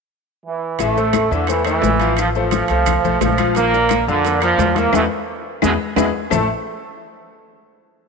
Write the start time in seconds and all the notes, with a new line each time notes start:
0.46 E3
0.79 A1 E3 A3 E4 E5, high bongo, high conga, high timbale, maracas
0.96 A3 A4 C5, high bongo, high conga, maracas
1.13 high bongo, high conga, high timbale, low timbale, claves, maracas
1.31 E2 D3 E3 E4 E5, maracas
1.47 E3 A3 A4 C5, high bongo, high conga, high timbale, maracas
1.65 E3 A3 A4 C5, high bongo, high conga, high timbale, claves, maracas
1.82 A1, high bongo, low bongo, high conga, low timbale, maracas
2.00 F3 F4 F5, high bongo, high timbale, maracas
2.17 F3, high bongo, high conga, high timbale, claves, maracas
2.35 F3 A3 A4 C5, high bongo, high conga, maracas
2.51 high bongo, high conga, high timbale, low timbale, maracas
2.68 C2 A3 A4 C5, high timbale, maracas
2.86 high bongo, high conga, low conga, high timbale, claves, maracas
3.03 B1 A3 A4 C5, high bongo, high conga, low conga, maracas
3.21 A#1 F3, high bongo, low bongo, high conga, high timbale, low timbale, maracas
3.38 F3 F4 F5, high bongo, high conga, high timbale, claves, maracas
3.55 F3 A#3 F4 F5, high bongo, high conga, high timbale, maracas
3.73 A#3 A#4 D5, high bongo, high conga, maracas
3.89 high bongo, high conga, high timbale, low timbale, claves, maracas
4.07 F2 D3 F3 F4 F5, maracas
4.24 A#3 A#4 D5, high bongo, high conga, high timbale, maracas
4.41 F3 A#3 A#4 D5, high bongo, high conga, high timbale, claves, maracas
4.58 E2, high bongo, low bongo, high conga, low timbale, maracas
4.76 E3 A#3 E4 E5, high bongo, high conga, high timbale, maracas
4.93 E2 B2 E3 A3 E4 A4 B4, high bongo, high conga, high timbale, claves, maracas
5.62 E2 B2 E3 G#3 E4 G#4 B4, high bongo, high conga, high timbale, claves, maracas
5.96 E2 B2 E3 G#3 E4 G#4 B4, high bongo, high conga, high timbale, claves, maracas
6.30 A1 A3 E4 A4 C5 E5 A5, low bongo, low conga, low timbale, claves, maracas